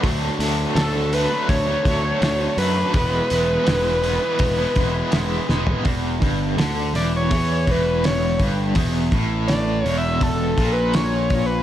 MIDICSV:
0, 0, Header, 1, 5, 480
1, 0, Start_track
1, 0, Tempo, 728155
1, 21, Time_signature, 4, 2, 24, 8
1, 7666, End_track
2, 0, Start_track
2, 0, Title_t, "Analog synth lead"
2, 0, Program_c, 0, 81
2, 497, Note_on_c, 0, 69, 88
2, 748, Note_on_c, 0, 71, 93
2, 758, Note_off_c, 0, 69, 0
2, 978, Note_off_c, 0, 71, 0
2, 982, Note_on_c, 0, 73, 116
2, 1673, Note_off_c, 0, 73, 0
2, 1704, Note_on_c, 0, 71, 116
2, 3591, Note_off_c, 0, 71, 0
2, 4587, Note_on_c, 0, 74, 93
2, 4638, Note_off_c, 0, 74, 0
2, 4723, Note_on_c, 0, 73, 103
2, 5082, Note_on_c, 0, 71, 92
2, 5092, Note_off_c, 0, 73, 0
2, 5308, Note_on_c, 0, 73, 79
2, 5318, Note_off_c, 0, 71, 0
2, 5541, Note_off_c, 0, 73, 0
2, 6246, Note_on_c, 0, 74, 106
2, 6470, Note_off_c, 0, 74, 0
2, 6470, Note_on_c, 0, 73, 106
2, 6576, Note_on_c, 0, 76, 94
2, 6586, Note_off_c, 0, 73, 0
2, 6740, Note_on_c, 0, 69, 97
2, 6750, Note_off_c, 0, 76, 0
2, 7058, Note_off_c, 0, 69, 0
2, 7072, Note_on_c, 0, 71, 88
2, 7220, Note_on_c, 0, 73, 94
2, 7230, Note_off_c, 0, 71, 0
2, 7554, Note_on_c, 0, 71, 83
2, 7564, Note_off_c, 0, 73, 0
2, 7666, Note_off_c, 0, 71, 0
2, 7666, End_track
3, 0, Start_track
3, 0, Title_t, "Overdriven electric guitar"
3, 0, Program_c, 1, 29
3, 12, Note_on_c, 1, 50, 92
3, 25, Note_on_c, 1, 54, 106
3, 30, Note_on_c, 1, 57, 92
3, 38, Note_on_c, 1, 62, 100
3, 258, Note_off_c, 1, 50, 0
3, 263, Note_off_c, 1, 54, 0
3, 266, Note_on_c, 1, 50, 85
3, 271, Note_on_c, 1, 54, 81
3, 273, Note_off_c, 1, 57, 0
3, 279, Note_off_c, 1, 62, 0
3, 281, Note_on_c, 1, 57, 91
3, 287, Note_on_c, 1, 62, 90
3, 497, Note_off_c, 1, 50, 0
3, 505, Note_on_c, 1, 50, 94
3, 511, Note_off_c, 1, 54, 0
3, 511, Note_off_c, 1, 57, 0
3, 518, Note_off_c, 1, 62, 0
3, 519, Note_on_c, 1, 54, 99
3, 519, Note_on_c, 1, 57, 94
3, 526, Note_on_c, 1, 62, 99
3, 729, Note_off_c, 1, 50, 0
3, 737, Note_on_c, 1, 50, 75
3, 739, Note_off_c, 1, 54, 0
3, 741, Note_off_c, 1, 57, 0
3, 747, Note_on_c, 1, 54, 87
3, 748, Note_off_c, 1, 62, 0
3, 749, Note_on_c, 1, 57, 84
3, 756, Note_on_c, 1, 62, 85
3, 851, Note_off_c, 1, 62, 0
3, 859, Note_on_c, 1, 62, 68
3, 861, Note_off_c, 1, 57, 0
3, 868, Note_on_c, 1, 57, 59
3, 874, Note_off_c, 1, 54, 0
3, 882, Note_on_c, 1, 54, 50
3, 1088, Note_off_c, 1, 62, 0
3, 1096, Note_on_c, 1, 62, 74
3, 1097, Note_off_c, 1, 50, 0
3, 1104, Note_off_c, 1, 57, 0
3, 1112, Note_off_c, 1, 54, 0
3, 1112, Note_on_c, 1, 57, 73
3, 1120, Note_on_c, 1, 54, 62
3, 1207, Note_off_c, 1, 54, 0
3, 1208, Note_on_c, 1, 50, 73
3, 1215, Note_on_c, 1, 54, 80
3, 1217, Note_off_c, 1, 57, 0
3, 1223, Note_off_c, 1, 62, 0
3, 1225, Note_on_c, 1, 57, 80
3, 1231, Note_on_c, 1, 62, 89
3, 1326, Note_off_c, 1, 62, 0
3, 1334, Note_on_c, 1, 62, 84
3, 1341, Note_off_c, 1, 57, 0
3, 1349, Note_on_c, 1, 57, 71
3, 1350, Note_off_c, 1, 54, 0
3, 1358, Note_on_c, 1, 54, 61
3, 1445, Note_off_c, 1, 50, 0
3, 1453, Note_on_c, 1, 50, 92
3, 1456, Note_off_c, 1, 54, 0
3, 1464, Note_on_c, 1, 54, 106
3, 1465, Note_off_c, 1, 57, 0
3, 1471, Note_off_c, 1, 62, 0
3, 1473, Note_on_c, 1, 57, 98
3, 1478, Note_on_c, 1, 62, 104
3, 1693, Note_off_c, 1, 50, 0
3, 1700, Note_off_c, 1, 54, 0
3, 1701, Note_on_c, 1, 50, 69
3, 1708, Note_on_c, 1, 54, 70
3, 1709, Note_off_c, 1, 57, 0
3, 1713, Note_off_c, 1, 62, 0
3, 1716, Note_on_c, 1, 57, 67
3, 1721, Note_on_c, 1, 62, 82
3, 1811, Note_off_c, 1, 62, 0
3, 1819, Note_on_c, 1, 62, 74
3, 1823, Note_off_c, 1, 57, 0
3, 1831, Note_on_c, 1, 57, 64
3, 1832, Note_off_c, 1, 54, 0
3, 1840, Note_on_c, 1, 54, 55
3, 1923, Note_off_c, 1, 62, 0
3, 1924, Note_off_c, 1, 50, 0
3, 1930, Note_off_c, 1, 57, 0
3, 1932, Note_on_c, 1, 52, 96
3, 1934, Note_off_c, 1, 54, 0
3, 1947, Note_on_c, 1, 56, 99
3, 1951, Note_on_c, 1, 59, 97
3, 1960, Note_on_c, 1, 64, 102
3, 2167, Note_off_c, 1, 52, 0
3, 2175, Note_on_c, 1, 52, 81
3, 2178, Note_off_c, 1, 56, 0
3, 2186, Note_on_c, 1, 56, 96
3, 2188, Note_off_c, 1, 59, 0
3, 2188, Note_off_c, 1, 64, 0
3, 2195, Note_on_c, 1, 59, 82
3, 2196, Note_on_c, 1, 64, 90
3, 2395, Note_off_c, 1, 52, 0
3, 2401, Note_off_c, 1, 56, 0
3, 2403, Note_on_c, 1, 52, 93
3, 2409, Note_on_c, 1, 56, 82
3, 2416, Note_off_c, 1, 59, 0
3, 2420, Note_off_c, 1, 64, 0
3, 2424, Note_on_c, 1, 59, 102
3, 2428, Note_on_c, 1, 64, 91
3, 2645, Note_off_c, 1, 52, 0
3, 2653, Note_on_c, 1, 52, 77
3, 2657, Note_off_c, 1, 56, 0
3, 2664, Note_off_c, 1, 59, 0
3, 2665, Note_on_c, 1, 56, 81
3, 2667, Note_off_c, 1, 64, 0
3, 2672, Note_on_c, 1, 59, 85
3, 2675, Note_on_c, 1, 64, 86
3, 2768, Note_off_c, 1, 64, 0
3, 2776, Note_on_c, 1, 64, 58
3, 2782, Note_off_c, 1, 59, 0
3, 2790, Note_on_c, 1, 59, 56
3, 2791, Note_off_c, 1, 56, 0
3, 2799, Note_on_c, 1, 56, 55
3, 3009, Note_off_c, 1, 64, 0
3, 3014, Note_off_c, 1, 52, 0
3, 3017, Note_off_c, 1, 59, 0
3, 3017, Note_on_c, 1, 64, 78
3, 3025, Note_on_c, 1, 59, 71
3, 3030, Note_off_c, 1, 56, 0
3, 3038, Note_on_c, 1, 56, 59
3, 3131, Note_on_c, 1, 52, 76
3, 3137, Note_off_c, 1, 56, 0
3, 3142, Note_off_c, 1, 59, 0
3, 3145, Note_on_c, 1, 56, 83
3, 3147, Note_off_c, 1, 64, 0
3, 3150, Note_on_c, 1, 59, 88
3, 3154, Note_on_c, 1, 64, 79
3, 3250, Note_off_c, 1, 64, 0
3, 3258, Note_on_c, 1, 64, 79
3, 3262, Note_off_c, 1, 59, 0
3, 3270, Note_on_c, 1, 59, 68
3, 3272, Note_off_c, 1, 56, 0
3, 3280, Note_on_c, 1, 56, 64
3, 3360, Note_off_c, 1, 52, 0
3, 3368, Note_on_c, 1, 52, 98
3, 3370, Note_off_c, 1, 56, 0
3, 3378, Note_on_c, 1, 56, 90
3, 3381, Note_off_c, 1, 59, 0
3, 3383, Note_off_c, 1, 64, 0
3, 3389, Note_on_c, 1, 59, 94
3, 3391, Note_on_c, 1, 64, 101
3, 3601, Note_off_c, 1, 52, 0
3, 3608, Note_off_c, 1, 56, 0
3, 3609, Note_on_c, 1, 52, 70
3, 3613, Note_off_c, 1, 59, 0
3, 3616, Note_on_c, 1, 56, 65
3, 3621, Note_off_c, 1, 64, 0
3, 3621, Note_on_c, 1, 59, 81
3, 3629, Note_on_c, 1, 64, 78
3, 3719, Note_off_c, 1, 64, 0
3, 3727, Note_on_c, 1, 64, 71
3, 3736, Note_off_c, 1, 59, 0
3, 3742, Note_off_c, 1, 56, 0
3, 3744, Note_on_c, 1, 59, 63
3, 3750, Note_on_c, 1, 56, 64
3, 3836, Note_off_c, 1, 64, 0
3, 3837, Note_off_c, 1, 52, 0
3, 3845, Note_off_c, 1, 59, 0
3, 3848, Note_off_c, 1, 56, 0
3, 3849, Note_on_c, 1, 40, 107
3, 4084, Note_off_c, 1, 40, 0
3, 4087, Note_on_c, 1, 43, 103
3, 4323, Note_off_c, 1, 43, 0
3, 4335, Note_on_c, 1, 50, 98
3, 4567, Note_off_c, 1, 50, 0
3, 4570, Note_on_c, 1, 40, 109
3, 4805, Note_off_c, 1, 40, 0
3, 4822, Note_on_c, 1, 52, 108
3, 5051, Note_off_c, 1, 52, 0
3, 5061, Note_on_c, 1, 40, 92
3, 5531, Note_off_c, 1, 40, 0
3, 5538, Note_on_c, 1, 43, 89
3, 5769, Note_off_c, 1, 43, 0
3, 5774, Note_on_c, 1, 40, 107
3, 6007, Note_off_c, 1, 40, 0
3, 6015, Note_on_c, 1, 45, 115
3, 6488, Note_off_c, 1, 45, 0
3, 6494, Note_on_c, 1, 40, 101
3, 6966, Note_on_c, 1, 46, 105
3, 6968, Note_off_c, 1, 40, 0
3, 7666, Note_off_c, 1, 46, 0
3, 7666, End_track
4, 0, Start_track
4, 0, Title_t, "Picked electric bass"
4, 0, Program_c, 2, 34
4, 21, Note_on_c, 2, 38, 100
4, 187, Note_off_c, 2, 38, 0
4, 257, Note_on_c, 2, 38, 84
4, 424, Note_off_c, 2, 38, 0
4, 497, Note_on_c, 2, 38, 99
4, 830, Note_off_c, 2, 38, 0
4, 983, Note_on_c, 2, 38, 93
4, 1147, Note_off_c, 2, 38, 0
4, 1224, Note_on_c, 2, 38, 91
4, 1388, Note_off_c, 2, 38, 0
4, 1461, Note_on_c, 2, 38, 79
4, 1626, Note_off_c, 2, 38, 0
4, 1697, Note_on_c, 2, 42, 88
4, 1863, Note_off_c, 2, 42, 0
4, 1942, Note_on_c, 2, 28, 92
4, 2106, Note_off_c, 2, 28, 0
4, 2185, Note_on_c, 2, 28, 88
4, 2348, Note_off_c, 2, 28, 0
4, 2424, Note_on_c, 2, 28, 91
4, 2753, Note_off_c, 2, 28, 0
4, 2899, Note_on_c, 2, 28, 87
4, 3064, Note_off_c, 2, 28, 0
4, 3137, Note_on_c, 2, 28, 91
4, 3302, Note_off_c, 2, 28, 0
4, 3381, Note_on_c, 2, 28, 77
4, 3545, Note_off_c, 2, 28, 0
4, 3624, Note_on_c, 2, 28, 88
4, 3787, Note_off_c, 2, 28, 0
4, 3859, Note_on_c, 2, 28, 89
4, 4080, Note_off_c, 2, 28, 0
4, 4097, Note_on_c, 2, 31, 98
4, 4319, Note_off_c, 2, 31, 0
4, 4333, Note_on_c, 2, 38, 84
4, 4557, Note_off_c, 2, 38, 0
4, 4570, Note_on_c, 2, 28, 81
4, 4795, Note_off_c, 2, 28, 0
4, 4815, Note_on_c, 2, 40, 87
4, 5038, Note_off_c, 2, 40, 0
4, 5058, Note_on_c, 2, 28, 93
4, 5510, Note_off_c, 2, 28, 0
4, 5536, Note_on_c, 2, 31, 83
4, 5759, Note_off_c, 2, 31, 0
4, 5771, Note_on_c, 2, 28, 97
4, 5996, Note_off_c, 2, 28, 0
4, 6013, Note_on_c, 2, 33, 89
4, 6468, Note_off_c, 2, 33, 0
4, 6489, Note_on_c, 2, 28, 90
4, 6946, Note_off_c, 2, 28, 0
4, 6972, Note_on_c, 2, 34, 91
4, 7666, Note_off_c, 2, 34, 0
4, 7666, End_track
5, 0, Start_track
5, 0, Title_t, "Drums"
5, 23, Note_on_c, 9, 36, 103
5, 25, Note_on_c, 9, 46, 84
5, 89, Note_off_c, 9, 36, 0
5, 91, Note_off_c, 9, 46, 0
5, 266, Note_on_c, 9, 46, 68
5, 332, Note_off_c, 9, 46, 0
5, 504, Note_on_c, 9, 46, 79
5, 511, Note_on_c, 9, 38, 119
5, 570, Note_off_c, 9, 46, 0
5, 577, Note_off_c, 9, 38, 0
5, 743, Note_on_c, 9, 46, 61
5, 809, Note_off_c, 9, 46, 0
5, 982, Note_on_c, 9, 36, 104
5, 982, Note_on_c, 9, 46, 84
5, 1048, Note_off_c, 9, 36, 0
5, 1048, Note_off_c, 9, 46, 0
5, 1222, Note_on_c, 9, 36, 83
5, 1224, Note_on_c, 9, 46, 57
5, 1288, Note_off_c, 9, 36, 0
5, 1290, Note_off_c, 9, 46, 0
5, 1463, Note_on_c, 9, 46, 78
5, 1470, Note_on_c, 9, 38, 114
5, 1529, Note_off_c, 9, 46, 0
5, 1536, Note_off_c, 9, 38, 0
5, 1701, Note_on_c, 9, 46, 63
5, 1767, Note_off_c, 9, 46, 0
5, 1937, Note_on_c, 9, 46, 76
5, 1940, Note_on_c, 9, 36, 105
5, 2003, Note_off_c, 9, 46, 0
5, 2006, Note_off_c, 9, 36, 0
5, 2177, Note_on_c, 9, 46, 57
5, 2243, Note_off_c, 9, 46, 0
5, 2417, Note_on_c, 9, 46, 78
5, 2424, Note_on_c, 9, 38, 118
5, 2483, Note_off_c, 9, 46, 0
5, 2490, Note_off_c, 9, 38, 0
5, 2661, Note_on_c, 9, 46, 50
5, 2727, Note_off_c, 9, 46, 0
5, 2894, Note_on_c, 9, 46, 74
5, 2900, Note_on_c, 9, 36, 104
5, 2960, Note_off_c, 9, 46, 0
5, 2966, Note_off_c, 9, 36, 0
5, 3135, Note_on_c, 9, 46, 53
5, 3140, Note_on_c, 9, 36, 78
5, 3201, Note_off_c, 9, 46, 0
5, 3206, Note_off_c, 9, 36, 0
5, 3374, Note_on_c, 9, 46, 70
5, 3382, Note_on_c, 9, 38, 119
5, 3440, Note_off_c, 9, 46, 0
5, 3448, Note_off_c, 9, 38, 0
5, 3621, Note_on_c, 9, 38, 61
5, 3687, Note_off_c, 9, 38, 0
5, 3736, Note_on_c, 9, 43, 95
5, 3802, Note_off_c, 9, 43, 0
5, 3856, Note_on_c, 9, 46, 71
5, 3860, Note_on_c, 9, 36, 104
5, 3922, Note_off_c, 9, 46, 0
5, 3926, Note_off_c, 9, 36, 0
5, 4100, Note_on_c, 9, 36, 91
5, 4102, Note_on_c, 9, 46, 61
5, 4166, Note_off_c, 9, 36, 0
5, 4168, Note_off_c, 9, 46, 0
5, 4340, Note_on_c, 9, 46, 75
5, 4347, Note_on_c, 9, 38, 108
5, 4406, Note_off_c, 9, 46, 0
5, 4413, Note_off_c, 9, 38, 0
5, 4582, Note_on_c, 9, 46, 58
5, 4589, Note_on_c, 9, 38, 29
5, 4648, Note_off_c, 9, 46, 0
5, 4655, Note_off_c, 9, 38, 0
5, 4817, Note_on_c, 9, 46, 81
5, 4820, Note_on_c, 9, 36, 105
5, 4883, Note_off_c, 9, 46, 0
5, 4886, Note_off_c, 9, 36, 0
5, 5059, Note_on_c, 9, 36, 79
5, 5059, Note_on_c, 9, 46, 59
5, 5124, Note_off_c, 9, 36, 0
5, 5124, Note_off_c, 9, 46, 0
5, 5300, Note_on_c, 9, 46, 83
5, 5308, Note_on_c, 9, 38, 115
5, 5366, Note_off_c, 9, 46, 0
5, 5374, Note_off_c, 9, 38, 0
5, 5533, Note_on_c, 9, 46, 56
5, 5535, Note_on_c, 9, 36, 78
5, 5599, Note_off_c, 9, 46, 0
5, 5601, Note_off_c, 9, 36, 0
5, 5768, Note_on_c, 9, 46, 79
5, 5774, Note_on_c, 9, 36, 106
5, 5834, Note_off_c, 9, 46, 0
5, 5840, Note_off_c, 9, 36, 0
5, 6011, Note_on_c, 9, 46, 55
5, 6012, Note_on_c, 9, 36, 92
5, 6077, Note_off_c, 9, 46, 0
5, 6078, Note_off_c, 9, 36, 0
5, 6251, Note_on_c, 9, 46, 75
5, 6259, Note_on_c, 9, 38, 108
5, 6317, Note_off_c, 9, 46, 0
5, 6325, Note_off_c, 9, 38, 0
5, 6497, Note_on_c, 9, 46, 46
5, 6563, Note_off_c, 9, 46, 0
5, 6731, Note_on_c, 9, 46, 76
5, 6732, Note_on_c, 9, 36, 104
5, 6797, Note_off_c, 9, 46, 0
5, 6798, Note_off_c, 9, 36, 0
5, 6972, Note_on_c, 9, 36, 79
5, 6972, Note_on_c, 9, 46, 62
5, 7038, Note_off_c, 9, 36, 0
5, 7038, Note_off_c, 9, 46, 0
5, 7209, Note_on_c, 9, 46, 81
5, 7216, Note_on_c, 9, 38, 110
5, 7275, Note_off_c, 9, 46, 0
5, 7282, Note_off_c, 9, 38, 0
5, 7449, Note_on_c, 9, 46, 58
5, 7452, Note_on_c, 9, 36, 82
5, 7515, Note_off_c, 9, 46, 0
5, 7518, Note_off_c, 9, 36, 0
5, 7666, End_track
0, 0, End_of_file